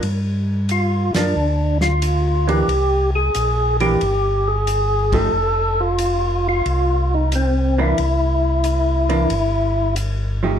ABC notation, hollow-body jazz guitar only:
X:1
M:4/4
L:1/8
Q:"Swing" 1/4=90
K:Cdor
V:1 name="Hollow-body jazz guitar"
z3 [F,B,D] z3 [=E,B,D] | z3 [=E,B,D] z3 [F,A,_EG] | z6 z [=E,B,D] | z3 [=E,B,D] z3 [F,A,_EG] |]